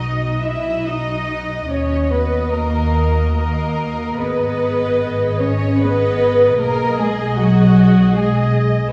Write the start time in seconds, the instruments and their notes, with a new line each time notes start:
Already playing: double bass section B1, cello section D#4, viola section F#4 D#5, violin section D#5
0.42 cello section E4, violin section E5
0.85 cello section D#4, viola section F#4 D#5, violin section D#5
1.69 double bass section D#2, cello section C#4, viola section F#4 D#5, violin section C#5
2.11 cello section B3, violin section B4
2.51 cello section A#3, violin section A#4
3.35 cello section A#3, violin section A#4
4.18 double bass section G#1, cello section B3, viola section G#4 D#5, violin section B4
5.39 cello section C#4, violin section C#5
5.78 cello section B3, viola section G#4 D#5, violin section B4
6.58 double bass section B1, cello section A#3, viola section G#4 D#5, violin section A#4
6.98 cello section G#3, violin section G#4
7.37 cello section F#3, violin section F#4
8.15 cello section G#3, violin section G#4, viola section G#4 D#5